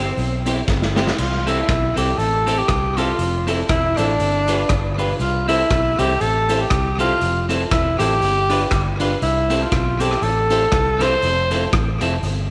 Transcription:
Already playing: fingered electric bass G1, tenor saxophone C4
0.17 fingered electric bass B1, closed hi-hat, cabasa
0.46 clean electric guitar C4 E4 G4, upright piano C4 E4 G4 C5, closed hi-hat, cabasa
0.68 fingered electric bass G1, kick, snare, cabasa
0.82 snare
0.96 upright piano C4 E4 G4 C5, clean electric guitar C4 E4 G4, snare, cabasa
1.07 snare
1.18 fingered electric bass C2, tenor saxophone F4, crash, cabasa
1.46 clean electric guitar C4 E4 A4, upright piano C4 E4 G4 A4, tenor saxophone E4, closed hi-hat, cabasa
1.69 fingered electric bass B1, kick, cross-stick, closed hi-hat, cabasa
1.96 fingered electric bass C2, clean electric guitar C4 E4 A4, upright piano C4 E4 G4 A4, tenor saxophone G4, closed hi-hat, cabasa
2.18 fingered electric bass A1, tenor saxophone A4, closed hi-hat, cabasa
2.46 clean electric guitar C4 G4 A4, upright piano C4 E4 G4 A4, closed hi-hat, cabasa
2.58 tenor saxophone G4
2.68 fingered electric bass C2, kick, cross-stick, closed hi-hat, cabasa
2.97 clean electric guitar C4 G4 A4, upright piano C4 E4 G4 A4, tenor saxophone F4, closed hi-hat, cabasa
3.19 fingered electric bass F1, closed hi-hat, cabasa
3.47 clean electric guitar C4 E4 A4, upright piano C4 E4 F4 A4, closed hi-hat, cabasa
3.69 fingered electric bass E1, tenor saxophone E4, kick, cross-stick, closed hi-hat, cabasa
3.97 fingered electric bass A1, clean electric guitar C4 E4 A4, upright piano C4 E4 F4 A4, tenor saxophone D4, closed hi-hat, cabasa
4.20 fingered electric bass G1, closed hi-hat, cabasa
4.48 clean electric guitar D4 F4 B4, upright piano D4 F4 G4 B4, closed hi-hat, cabasa
4.69 fingered electric bass G1, kick, cross-stick, closed hi-hat, cabasa
4.98 upright piano D4 F4 G4 B4, clean electric guitar D4 F4 B4, open hi-hat, cabasa
5.20 fingered electric bass C2, tenor saxophone F4, closed hi-hat, cabasa
5.48 clean electric guitar C4 E4 A4, upright piano E4 G4 A4 C5, tenor saxophone E4, closed hi-hat, cabasa
5.70 fingered electric bass B1, kick, cross-stick, closed hi-hat, cabasa
5.98 fingered electric bass C2, clean electric guitar C4 E4 A4, upright piano E4 G4 A4 C5, tenor saxophone G4, closed hi-hat, cabasa
6.21 fingered electric bass A1, tenor saxophone A4, closed hi-hat, cabasa
6.49 clean electric guitar C4 G4 A4, upright piano E4 G4 A4 C5, closed hi-hat, cabasa
6.54 tenor saxophone A4
6.61 tenor saxophone G4
6.70 fingered electric bass C2, kick, cross-stick, closed hi-hat, cabasa
6.99 clean electric guitar C4 G4 A4, upright piano E4 G4 A4 C5, tenor saxophone F4, closed hi-hat, cabasa
7.21 fingered electric bass F1, closed hi-hat, cabasa
7.49 clean electric guitar C4 E4 A4, upright piano E4 F4 A4 C5, closed hi-hat, cabasa
7.71 fingered electric bass E1, tenor saxophone E4, kick, cross-stick, closed hi-hat, cabasa
7.99 fingered electric bass A1, clean electric guitar C4 E4 A4, upright piano E4 F4 A4 C5, tenor saxophone G4, closed hi-hat, cabasa
8.21 fingered electric bass G1, closed hi-hat, cabasa
8.49 upright piano D4 F4 G4 B4, clean electric guitar D4 F4 B4, closed hi-hat, cabasa
8.71 fingered electric bass G1, kick, cross-stick, closed hi-hat, cabasa
8.99 upright piano D4 F4 G4 B4, clean electric guitar D4 F4 B4, closed hi-hat, cabasa
9.22 fingered electric bass C2, tenor saxophone E4, closed hi-hat, cabasa
9.49 clean electric guitar C4 E4 A4, upright piano E4 G4 A4 C5, closed hi-hat, cabasa
9.62 tenor saxophone F4
9.72 fingered electric bass B1, kick, cross-stick, closed hi-hat, cabasa
10.00 clean electric guitar C4 E4 A4, upright piano E4 G4 A4 C5, tenor saxophone G4, closed hi-hat, cabasa
10.11 cross-stick
10.22 fingered electric bass A1, tenor saxophone A4, closed hi-hat, cabasa
10.50 clean electric guitar C4 G4 A4, upright piano E4 G4 A4 C5, closed hi-hat, cabasa
10.72 fingered electric bass C2, kick, cross-stick, closed hi-hat, cabasa
10.99 clean electric guitar C4 G4 A4, upright piano E4 G4 A4 C5, tenor saxophone C5, cross-stick, closed hi-hat, cabasa
11.22 fingered electric bass F1, closed hi-hat, cabasa
11.51 clean electric guitar C4 E4 A4, upright piano E4 F4 A4 C5, closed hi-hat, cabasa
11.73 fingered electric bass A1, kick, cross-stick, closed hi-hat, cabasa
12.01 fingered electric bass F1, clean electric guitar C4 E4 A4, upright piano E4 F4 A4 C5, closed hi-hat, cabasa
12.23 fingered electric bass G1, closed hi-hat, cabasa

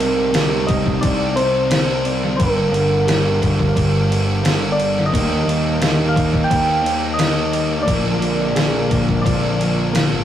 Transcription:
Already playing: distorted electric guitar C3 G3 C4, ambient pad D#4 A#4 G5 C6, overdriven electric guitar D#4 G4, soft synth lead A#4, clean electric guitar A#4
0.00 fingered electric bass C2, crash
0.33 distorted electric guitar C3 G3 C4, clean electric guitar G4, snare, crash
0.67 clean electric guitar A#4, soft synth lead D#5, kick, crash
0.86 kick
1.01 fingered electric bass C2, clean electric guitar C5, soft synth lead D5, kick, crash
1.36 distorted electric guitar C3 G3 C4, soft synth lead C5, crash
1.70 distorted electric guitar C3 G3 C4, clean electric guitar A#4, snare, crash
2.04 distorted electric guitar C4, clean electric guitar D5, crash
2.08 distorted electric guitar G3
2.24 snare
2.37 fingered electric bass G1, distorted electric guitar G2 D3, overdriven electric guitar A#3 D4, soft synth lead A#4, clean electric guitar A#4, ambient pad F5 G5 D6, kick, crash
2.41 distorted electric guitar G3, overdriven electric guitar G4
2.71 fingered electric bass G1, crash
3.06 distorted electric guitar G2 D3 G3, clean electric guitar G4, snare, crash
3.42 clean electric guitar A#4, kick, crash
3.59 kick
3.75 fingered electric bass G1, clean electric guitar C5, kick, crash
4.09 distorted electric guitar G2 D3 G3, crash
4.43 distorted electric guitar G2 D3 G3, clean electric guitar A#4, snare, crash
4.72 soft synth lead D5
4.78 distorted electric guitar D3 G3, clean electric guitar D5, crash
4.98 snare
5.06 soft synth lead D#5
5.12 fingered electric bass D#2, distorted electric guitar D#3 A#3 D#4, overdriven electric guitar G3 G4, clean electric guitar A#4, ambient pad A#4 D#5 D6, kick, crash
5.47 fingered electric bass D#2, crash
5.81 distorted electric guitar D#3 A#3 D#4, clean electric guitar G4, snare, crash
6.09 soft synth lead F5
6.16 clean electric guitar A#4, kick, crash
6.34 kick
6.44 soft synth lead G5
6.51 fingered electric bass D#2, clean electric guitar C5, kick, crash
6.82 distorted electric guitar D#3 A#3 D#4
6.86 crash
7.14 distorted electric guitar D#3, soft synth lead D#5
7.19 distorted electric guitar A#3 D#4, clean electric guitar A#4, snare, crash
7.53 distorted electric guitar A#3 D#4, clean electric guitar D6, crash
7.83 ambient pad A#4 F5 G#5, soft synth lead D5
7.87 fingered electric bass A#1, distorted electric guitar A#2 F3, overdriven electric guitar D3 D4 G#4, clean electric guitar A#4, kick, crash
7.91 distorted electric guitar A#3
8.19 fingered electric bass A#1, crash
8.55 distorted electric guitar A#2 F3 A#3, clean electric guitar G#4, snare, crash
8.90 clean electric guitar A#4, kick, crash
9.09 kick
9.22 fingered electric bass A#1, clean electric guitar C5, soft synth lead D5
9.26 kick, crash
9.59 distorted electric guitar A#2 F3 A#3, crash
9.93 distorted electric guitar A#2 F3 A#3, clean electric guitar A#4, snare, crash
10.12 fingered electric bass G#1

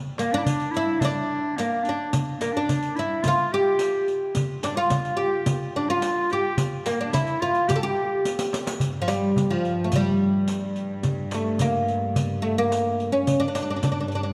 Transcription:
0.18 clarinet A#3, oud A#3, riq, darbuka tek
0.32 clarinet D4, oud D4
0.38 clarinet E4
0.44 clarinet D4, riq, darbuka dum
0.60 riq
0.71 clarinet E4, riq, darbuka ka
0.77 oud E4
0.89 darbuka ka
1.00 clarinet D4, riq, darbuka dum
1.05 oud D4
1.57 clarinet A#3, oud A#3, riq, darbuka tek
1.84 clarinet D4, riq, darbuka ka
1.89 oud D4
2.13 riq, darbuka dum
2.39 clarinet A#3, oud A#3, riq, darbuka tek
2.53 clarinet D4
2.57 oud D4
2.69 riq, darbuka dum
2.83 riq
2.96 clarinet E4, oud E4, riq, darbuka ka
3.11 darbuka ka
3.23 clarinet F4, riq, darbuka dum
3.28 oud F4
3.53 clarinet G4, oud G4
3.79 riq, darbuka tek
4.08 riq, darbuka ka
4.35 riq, darbuka dum
4.62 clarinet D4, oud D4, riq, darbuka tek
4.76 clarinet F4, oud F4
4.90 riq, darbuka dum
5.05 riq
5.17 oud G4, clarinet G4, darbuka ka
5.34 darbuka ka
5.46 riq, darbuka dum
5.75 clarinet D4, oud D4
5.89 clarinet F4, oud F4
6.02 riq, darbuka tek
6.30 clarinet G4, oud G4, riq, darbuka ka
6.58 riq, darbuka dum
6.86 oud A#3, clarinet A#3, riq, darbuka tek
7.01 oud D4
7.12 clarinet E4, oud E4, riq, darbuka dum
7.27 riq, darbuka ka
7.41 clarinet F4, oud F4, riq, darbuka ka
7.55 riq, darbuka ka
7.68 clarinet G4, oud G4, riq, darbuka dum
7.76 oud A4
7.82 clarinet G4, oud G4
8.25 riq, darbuka tek
8.39 riq, darbuka ka
8.53 riq, darbuka tek
8.67 riq, darbuka ka
8.80 cello section G2, riq, darbuka dum
9.02 oud F3
9.08 oud G3, riq, darbuka tek
9.36 riq, darbuka dum
9.50 oud F3
9.65 riq
9.84 oud A3
9.92 oud G3, riq, darbuka dum
10.48 riq, darbuka tek
10.76 riq
11.03 riq, darbuka dum
11.31 oud A3, riq, darbuka tek
11.59 oud A#3, riq, darbuka dum
11.88 riq
12.16 riq, darbuka dum
12.42 oud A3
12.58 oud A#3
12.72 riq, darbuka tek
13.00 riq
13.12 oud C#4
13.27 cello section G2, riq, darbuka dum
13.40 oud D4
13.48 oud D4
13.55 oud D4, riq, darbuka tek
13.62 oud D4
13.70 oud D4
13.76 oud D4
13.83 oud D4, riq, darbuka dum
13.92 oud D4
14.00 oud D4
14.08 oud D4, riq
14.15 oud D4
14.23 oud D4

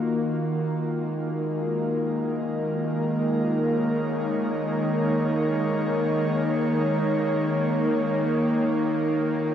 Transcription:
Already playing: analog synth pad D#3 A#3 F4 F#4, synth drone D#3 A#3
0.88 analog synth pad G#3
1.25 analog synth pad A#4
2.01 analog synth pad D#4
3.53 analog synth pad C#5
8.23 analog synth pad D#3
8.80 analog synth pad A#3
9.30 analog synth pad F4

